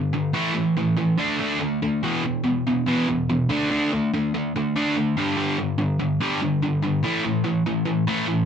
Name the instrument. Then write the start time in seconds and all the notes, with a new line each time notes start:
overdriven electric guitar
Already playing: G2 D3
0.13 G2 D3
0.33 A2 E3 A3
0.55 A2 E3
0.77 A2 E3
0.97 A2 E3
1.18 D3 A3 D4
1.40 D3 A3 D4
1.60 D3 A3
1.82 D3 A3
2.03 E2 B2 E3
2.24 E2 B2
2.44 E2 B2
2.67 E2 B2
2.86 E2 B2 E3
3.08 E2 B2
3.30 E2 B2
3.49 D3 A3 D4
3.70 D3 A3 D4
3.92 D3 A3
4.14 D3 A3
4.34 D3 A3
4.56 D3 A3
4.76 D3 A3 D4
4.96 D3 A3
5.17 G2 D3 G3
5.37 G2 D3 G3
5.58 G2 D3
5.78 G2 D3
6.00 G2 D3
6.21 G2 D3 G3
6.42 G2 D3
6.62 G2 D3
6.82 G2 D3
7.03 A2 E3 A3
7.24 A2 E3
7.44 A2 E3
7.66 A2 E3
7.85 A2 E3
8.07 A2 E3 A3
8.27 A2 E3